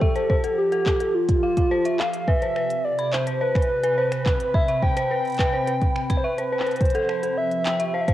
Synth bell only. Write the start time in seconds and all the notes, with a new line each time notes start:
0.01 E5
0.16 C5
0.30 C5
0.44 A4
0.72 A4
0.86 A4
1.01 A4
1.43 F5
1.57 F5
1.71 C5
1.86 E5
2.00 F5
2.28 B4
2.42 C5
2.56 B4
2.99 B5
3.13 E5
3.27 C5
3.41 C5
3.55 B4
3.84 B4
3.98 C5
4.12 B4
4.54 B5
4.68 E5
4.83 C5
4.97 C5
5.11 B4
5.39 B4
5.53 C5
5.67 B4
6.10 B5
6.24 E5
6.38 C5
6.52 C5
6.67 B4
6.95 A4
7.09 C5
7.23 A4
7.66 G5
7.80 E5
7.94 C5
8.08 C5